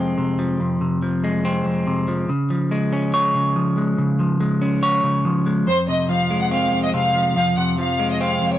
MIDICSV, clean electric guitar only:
0, 0, Header, 1, 2, 480
1, 0, Start_track
1, 0, Key_signature, -4, "minor"
1, 0, Tempo, 422535
1, 683, Time_signature, 4, 2, 24, 8
1, 9754, End_track
2, 0, Start_track
2, 0, Title_t, "Clean electric guitar"
2, 0, Program_c, 0, 27
2, 0, Note_on_c, 0, 41, 75
2, 0, Note_on_c, 0, 48, 75
2, 0, Note_on_c, 0, 53, 87
2, 0, Note_on_c, 0, 56, 85
2, 0, Note_on_c, 0, 60, 100
2, 188, Note_off_c, 0, 48, 0
2, 201, Note_on_c, 0, 48, 90
2, 428, Note_off_c, 0, 53, 0
2, 441, Note_on_c, 0, 53, 83
2, 669, Note_off_c, 0, 41, 0
2, 683, Note_off_c, 0, 56, 0
2, 683, Note_on_c, 0, 41, 96
2, 908, Note_off_c, 0, 48, 0
2, 921, Note_off_c, 0, 60, 0
2, 921, Note_on_c, 0, 48, 76
2, 1151, Note_off_c, 0, 53, 0
2, 1164, Note_on_c, 0, 53, 84
2, 1404, Note_on_c, 0, 56, 88
2, 1644, Note_on_c, 0, 60, 104
2, 1869, Note_off_c, 0, 41, 0
2, 1882, Note_on_c, 0, 41, 76
2, 2109, Note_off_c, 0, 48, 0
2, 2123, Note_on_c, 0, 48, 84
2, 2349, Note_off_c, 0, 53, 0
2, 2363, Note_on_c, 0, 53, 88
2, 2599, Note_off_c, 0, 48, 0
2, 2603, Note_off_c, 0, 41, 0
2, 2603, Note_off_c, 0, 53, 0
2, 2603, Note_off_c, 0, 56, 0
2, 2603, Note_off_c, 0, 60, 0
2, 2603, Note_on_c, 0, 49, 96
2, 2843, Note_on_c, 0, 53, 77
2, 3082, Note_on_c, 0, 56, 90
2, 3324, Note_on_c, 0, 61, 88
2, 3564, Note_on_c, 0, 73, 108
2, 3788, Note_off_c, 0, 49, 0
2, 3802, Note_on_c, 0, 49, 75
2, 4031, Note_off_c, 0, 53, 0
2, 4045, Note_on_c, 0, 53, 80
2, 4270, Note_off_c, 0, 56, 0
2, 4284, Note_on_c, 0, 56, 83
2, 4512, Note_off_c, 0, 49, 0
2, 4523, Note_off_c, 0, 61, 0
2, 4525, Note_on_c, 0, 49, 92
2, 4750, Note_off_c, 0, 53, 0
2, 4763, Note_off_c, 0, 73, 0
2, 4764, Note_on_c, 0, 53, 81
2, 4990, Note_off_c, 0, 56, 0
2, 5004, Note_on_c, 0, 56, 84
2, 5241, Note_on_c, 0, 61, 89
2, 5482, Note_on_c, 0, 73, 101
2, 5709, Note_off_c, 0, 49, 0
2, 5722, Note_on_c, 0, 49, 72
2, 5949, Note_off_c, 0, 53, 0
2, 5962, Note_on_c, 0, 53, 86
2, 6188, Note_off_c, 0, 56, 0
2, 6202, Note_on_c, 0, 56, 83
2, 6438, Note_off_c, 0, 49, 0
2, 6442, Note_off_c, 0, 53, 0
2, 6442, Note_off_c, 0, 56, 0
2, 6442, Note_off_c, 0, 61, 0
2, 6442, Note_off_c, 0, 73, 0
2, 6442, Note_on_c, 0, 41, 94
2, 6683, Note_on_c, 0, 48, 74
2, 6920, Note_on_c, 0, 53, 90
2, 7163, Note_on_c, 0, 56, 86
2, 7401, Note_on_c, 0, 60, 99
2, 7629, Note_off_c, 0, 41, 0
2, 7642, Note_on_c, 0, 41, 72
2, 7868, Note_off_c, 0, 48, 0
2, 7881, Note_on_c, 0, 48, 89
2, 8109, Note_off_c, 0, 53, 0
2, 8123, Note_on_c, 0, 53, 81
2, 8348, Note_off_c, 0, 41, 0
2, 8362, Note_on_c, 0, 41, 100
2, 8363, Note_off_c, 0, 56, 0
2, 8588, Note_off_c, 0, 48, 0
2, 8602, Note_off_c, 0, 60, 0
2, 8602, Note_on_c, 0, 48, 76
2, 8829, Note_off_c, 0, 53, 0
2, 8843, Note_on_c, 0, 53, 83
2, 9081, Note_on_c, 0, 56, 88
2, 9323, Note_on_c, 0, 60, 103
2, 9548, Note_off_c, 0, 41, 0
2, 9562, Note_on_c, 0, 41, 74
2, 9754, Note_off_c, 0, 41, 0
2, 9754, Note_off_c, 0, 48, 0
2, 9754, Note_off_c, 0, 53, 0
2, 9754, Note_off_c, 0, 56, 0
2, 9754, Note_off_c, 0, 60, 0
2, 9754, End_track
0, 0, End_of_file